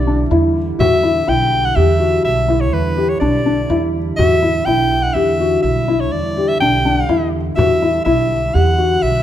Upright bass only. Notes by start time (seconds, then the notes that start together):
Already playing: B1
0.31 E2
0.79 E2
1.28 B1
1.77 E2
2.25 B1
2.73 E2
3.21 B1
3.70 E2
4.19 E2
4.67 B1
5.15 E2
5.64 B1
6.12 E2
6.61 B1
7.09 E2
7.58 E2
8.06 B1
8.55 E2
9.03 B1